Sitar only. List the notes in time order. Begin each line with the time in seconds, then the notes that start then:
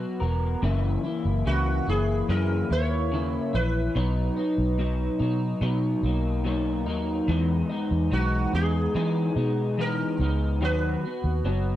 Already playing: A#4
1.47 F#4
1.89 G#4
2.30 A#4
2.72 C#5
3.55 B4
8.13 F#4
8.55 G#4
9.81 A#4
10.65 B4